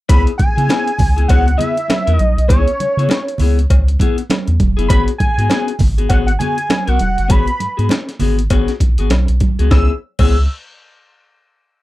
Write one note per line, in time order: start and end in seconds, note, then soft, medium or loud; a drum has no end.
0.09 0.26 C#2 loud
0.09 0.30 B3 medium
0.09 0.30 E4 medium
0.09 0.31 G#4 medium
0.09 0.23 B5 loud
0.09 kick loud
0.09 closed hi-hat loud
0.09 cowbell medium
0.09 muted conga medium
0.27 closed hi-hat soft
0.38 0.47 C#3 soft
0.38 1.25 G#5 loud
0.38 muted clean electric guitar stroke soft
0.38 kick loud
0.38 closed hi-hat medium
0.38 muted conga medium
0.56 0.68 C#3 loud
0.56 0.67 B3 medium
0.56 0.68 E4 medium
0.56 0.68 G#4 medium
0.56 closed hi-hat soft
0.68 0.89 B3 medium
0.68 0.90 E4 medium
0.68 0.90 G#4 medium
0.68 snare loud
0.68 closed hi-hat medium
0.68 cowbell medium
0.68 high conga medium
0.88 closed hi-hat soft
0.98 1.26 C#2 medium
0.98 muted clean electric guitar stroke soft
0.98 kick medium
0.98 open hi-hat medium
0.98 low conga medium
1.16 1.27 B3 soft
1.16 1.28 E4 medium
1.16 1.28 G#4 medium
1.16 closed hi-hat soft
1.28 1.56 C#2 medium
1.28 1.49 B3 medium
1.28 1.47 E4 medium
1.28 1.46 G#4 loud
1.28 1.57 F#5 loud
1.28 kick medium
1.28 closed hi-hat medium
1.28 cowbell medium
1.28 muted conga soft
1.47 muted clean electric guitar stroke soft
1.47 closed hi-hat soft
1.57 1.75 B3 medium
1.57 1.75 E4 medium
1.57 1.75 G#4 medium
1.57 2.17 E5 loud
1.57 closed hi-hat medium
1.57 muted conga medium
1.57 low conga medium
1.76 muted clean electric guitar stroke soft
1.76 closed hi-hat soft
1.88 muted clean electric guitar stroke medium
1.88 snare loud
1.88 closed hi-hat medium
1.88 cowbell medium
1.88 high conga medium
2.07 2.18 E2 medium
2.07 2.18 B3 medium
2.07 2.18 E4 medium
2.07 2.20 A#4 medium
2.07 closed hi-hat medium
2.17 2.36 A#1 medium
2.17 2.45 D#5 loud
2.17 muted clean electric guitar stroke soft
2.17 closed hi-hat medium
2.17 high conga medium
2.37 2.48 B1 medium
2.37 muted clean electric guitar stroke soft
2.37 closed hi-hat soft
2.48 2.66 C#2 loud
2.48 2.69 B3 medium
2.48 2.68 E4 medium
2.48 2.66 G#4 medium
2.48 3.65 C#5 medium
2.48 kick loud
2.48 closed hi-hat loud
2.48 cowbell medium
2.48 muted conga medium
2.68 muted clean electric guitar stroke soft
2.68 closed hi-hat soft
2.80 2.87 C#3 medium
2.80 muted clean electric guitar stroke soft
2.80 closed hi-hat medium
2.80 muted conga medium
2.97 3.08 C#3 loud
2.97 3.10 B3 soft
2.97 3.09 E4 medium
2.97 3.09 G#4 medium
2.97 closed hi-hat soft
3.09 snare loud
3.09 closed hi-hat medium
3.09 cowbell medium
3.09 high conga medium
3.27 muted clean electric guitar stroke soft
3.27 closed hi-hat soft
3.38 3.66 C#2 medium
3.38 3.60 B3 medium
3.38 3.59 E4 medium
3.38 3.58 G#4 medium
3.38 open hi-hat medium
3.38 low conga medium
3.59 muted clean electric guitar stroke soft
3.59 closed hi-hat soft
3.70 3.97 C#2 loud
3.70 kick loud
3.70 closed hi-hat medium
3.70 cowbell medium
3.88 muted clean electric guitar stroke soft
3.88 closed hi-hat soft
3.99 4.20 B3 medium
3.99 4.18 E4 medium
3.99 4.17 G#4 loud
3.99 kick medium
3.99 closed hi-hat medium
3.99 muted conga soft
4.18 muted clean electric guitar stroke soft
4.18 closed hi-hat medium
4.30 muted clean electric guitar stroke soft
4.30 snare loud
4.30 closed hi-hat medium
4.30 cowbell medium
4.30 high conga medium
4.47 4.59 E2 medium
4.47 muted clean electric guitar stroke soft
4.47 closed hi-hat medium
4.60 4.76 E1 medium
4.60 kick medium
4.60 closed hi-hat medium
4.60 high conga medium
4.77 4.89 F#1 medium
4.77 4.88 B3 medium
4.77 4.90 E4 medium
4.77 4.89 G#4 medium
4.77 closed hi-hat soft
4.88 5.06 G#1 loud
4.88 5.10 B3 medium
4.88 5.10 F#4 medium
4.88 5.10 G#4 medium
4.88 5.02 B5 loud
4.88 kick loud
4.88 closed hi-hat loud
4.88 cowbell medium
4.88 muted conga medium
5.08 closed hi-hat soft
5.18 5.27 G#2 soft
5.18 5.75 G#5 loud
5.18 muted clean electric guitar stroke soft
5.18 kick medium
5.18 closed hi-hat medium
5.18 muted conga medium
5.38 5.49 G#2 loud
5.38 5.49 B3 soft
5.38 5.49 F#4 medium
5.38 5.49 G#4 medium
5.38 closed hi-hat soft
5.50 5.70 B3 medium
5.50 5.71 F#4 medium
5.50 5.71 G#4 loud
5.50 snare loud
5.50 closed hi-hat medium
5.50 cowbell medium
5.50 high conga medium
5.68 closed hi-hat soft
5.79 6.07 G#1 medium
5.79 muted clean electric guitar stroke soft
5.79 kick loud
5.79 open hi-hat medium
5.79 low conga medium
5.98 6.08 B3 medium
5.98 6.09 F#4 medium
5.98 6.09 G#4 medium
5.98 closed hi-hat medium
6.09 6.37 G#1 loud
6.09 6.30 B3 medium
6.09 6.28 F#4 loud
6.09 6.27 G#4 medium
6.09 6.17 F#5 medium
6.09 kick medium
6.09 closed hi-hat loud
6.09 cowbell medium
6.27 6.32 F#5 medium
6.27 muted clean electric guitar stroke soft
6.27 closed hi-hat soft
6.39 6.57 B3 medium
6.39 6.57 F#4 medium
6.39 6.56 G#4 medium
6.39 6.90 G#5 loud
6.39 closed hi-hat medium
6.39 muted conga soft
6.39 low conga medium
6.57 muted clean electric guitar stroke soft
6.57 closed hi-hat medium
6.69 muted clean electric guitar stroke medium
6.69 snare loud
6.69 closed hi-hat medium
6.69 cowbell medium
6.69 high conga medium
6.87 6.99 B1 medium
6.87 6.99 B3 medium
6.87 7.00 F#4 medium
6.87 7.01 A#4 medium
6.87 7.00 F#5 medium
6.87 closed hi-hat soft
6.99 7.16 E1 medium
6.99 7.32 F#5 medium
6.99 muted clean electric guitar stroke soft
6.99 closed hi-hat medium
6.99 high conga medium
7.18 7.29 F#1 medium
7.18 muted clean electric guitar stroke soft
7.18 closed hi-hat soft
7.28 7.46 G#1 loud
7.28 7.49 B3 medium
7.28 7.47 F#4 loud
7.28 7.46 G#4 medium
7.28 7.91 B5 loud
7.28 kick loud
7.28 closed hi-hat loud
7.28 cowbell medium
7.28 muted conga medium
7.47 muted clean electric guitar stroke soft
7.47 closed hi-hat soft
7.59 7.68 G#2 soft
7.59 muted clean electric guitar stroke soft
7.59 closed hi-hat medium
7.59 muted conga medium
7.77 7.89 G#2 loud
7.77 7.90 B3 medium
7.77 7.89 F#4 medium
7.77 7.89 G#4 medium
7.77 closed hi-hat soft
7.89 snare loud
7.89 closed hi-hat medium
7.89 cowbell medium
7.89 high conga medium
8.09 muted clean electric guitar stroke soft
8.09 snare soft
8.09 closed hi-hat soft
8.19 8.48 G#1 medium
8.19 8.40 B3 medium
8.19 8.38 F#4 medium
8.19 8.37 G#4 medium
8.19 open hi-hat medium
8.19 low conga medium
8.38 muted clean electric guitar stroke soft
8.38 closed hi-hat medium
8.50 8.67 G#1 medium
8.50 8.71 B3 medium
8.50 8.71 F#4 loud
8.50 8.72 G#4 medium
8.50 kick medium
8.50 closed hi-hat loud
8.50 cowbell medium
8.50 muted conga soft
8.68 snare soft
8.68 closed hi-hat soft
8.80 8.97 B1 medium
8.80 muted clean electric guitar stroke soft
8.80 kick medium
8.80 closed hi-hat medium
8.80 muted conga medium
8.98 9.10 G#1 medium
8.98 9.10 B3 medium
8.98 9.10 F#4 medium
8.98 9.10 G#4 medium
8.98 closed hi-hat medium
9.10 9.27 B1 loud
9.10 muted clean electric guitar stroke soft
9.10 snare loud
9.10 closed hi-hat medium
9.10 cowbell medium
9.10 high conga medium
9.28 9.40 B1 loud
9.28 muted clean electric guitar stroke soft
9.28 closed hi-hat medium
9.40 kick medium
9.40 closed hi-hat medium
9.40 high conga medium
9.59 9.70 C#2 medium
9.59 9.69 B3 medium
9.59 9.71 F#4 medium
9.59 9.71 G#4 medium
9.59 closed hi-hat soft
9.70 9.90 C#2 loud
9.70 9.91 B3 medium
9.70 9.92 E4 medium
9.70 9.92 G#4 medium
9.70 9.90 E6 medium
9.70 kick loud
9.70 snare loud
9.70 cowbell medium
9.70 muted conga medium
10.19 10.47 C#2 loud
10.19 10.35 B3 medium
10.19 10.35 E4 medium
10.19 10.36 G#4 medium
10.19 10.48 E6 medium
10.19 kick loud
10.19 crash medium
10.19 cowbell medium
10.19 muted conga medium